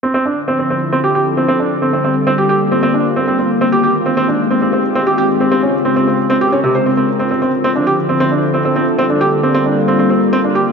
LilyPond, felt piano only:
\new Staff \with { instrumentName = "Felt piano" } { \time 4/4 \key g \phrygian \tempo 4 = 134 c'16 c'16 d'16 r16 c'16 c'16 c'16 r16 c'16 g'16 g'16 r16 c'16 c'16 d'16 r16 | c'16 c'16 c'16 r16 c'16 g'16 g'16 r16 c'16 c'16 d'16 r16 c'16 c'16 c'16 r16 | c'16 g'16 g'16 r16 c'16 c'16 d'16 r16 c'16 c'16 c'16 r16 c'16 g'16 g'16 r16 | c'16 c'16 des'16 r16 c'16 c'16 c'16 r16 c'16 g'16 des'16 c16 c''16 c'16 c'16 r16 |
c'16 c'16 c'16 r16 c'16 d'16 g'16 r16 c'16 c'16 d'16 r16 c'16 c'16 c'16 r16 | c'16 d'16 g'16 r16 c'16 c'16 d'16 r16 c'16 c'16 c'16 r16 c'16 d'16 g'16 r16 | }